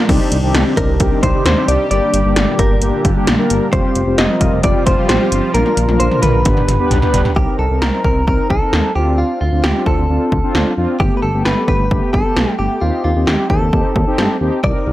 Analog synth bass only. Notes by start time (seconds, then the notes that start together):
0.09 C2
0.32 C2
0.43 C2
0.54 C2
0.77 C2
0.89 C2
1.00 C2
1.23 C2
1.45 D#2
1.68 C2
1.91 G1
2.14 G1
2.25 G1
2.36 G1
2.59 G1
2.70 G1
2.82 G1
3.05 G1
3.27 A#1
3.50 G1
3.73 F1
3.95 F1
4.07 F1
4.18 F1
4.41 F1
4.52 F1
4.64 F1
4.87 F1
5.09 A1
5.32 G1
5.54 A#1
5.77 A#1
5.89 A#1
6.00 A#1
6.23 A#1
6.34 A#1
6.46 G1
6.68 G1
6.91 B1
7.14 G1
7.36 C2
7.59 C2
7.71 C2
7.82 C2
8.05 C2
8.16 C2
8.28 C2
8.50 C2
8.73 D#2
8.96 D2
9.41 D2
9.52 D2
9.64 D2
9.86 D2
9.98 D2
10.09 D2
10.32 D2
10.55 D2
10.77 F2
11.00 G1
11.23 G1
11.34 G1
11.45 G1
11.68 G1
11.80 G1
11.91 G1
12.14 G1
12.36 B1
12.59 G1
12.82 D#2
13.04 D#2
13.16 D#2
13.27 D#2
13.50 D#2
13.61 D#2
13.73 D#2
13.96 D#2
14.18 G2
14.41 D#2
14.64 C2
14.86 C2